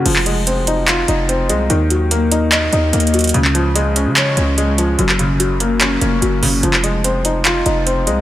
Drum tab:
CC |x-----------------------------------------------------------------------------------------------|------------------------------------------------------------------------------------------------|------------------------------------------------------------------------------------------------|------------------------------------------------------------------------------------------------|
HH |x-----------x-----------x-----------x-----------x-----------x-----------x-----------x-----------|x-----------x-----------x-----------x-----------x-----------x-----------x---x---x---x--xx-x-xx--|x-----------x-----------x-----------x-----------x-----------x-----------x-----------x-----------|x-----------x-----------x-----------x-----------x-----------x-----------x-----------o-----------|
CP |------x-----------------------------------------x-----------------------------------------------|------------------------------------------------x-----------------------------------------------|------x-----------------------------------------x-----------------------------------------------|------x-----------------------------------------x-----------------------------------------------|

CC |------------------------------------------------------------------------------------------------|
HH |x-----------x-----------x-----------x-----------x-----------x-----------x-----------x-----------|
CP |------x-----------------------------------------x-----------------------------------------------|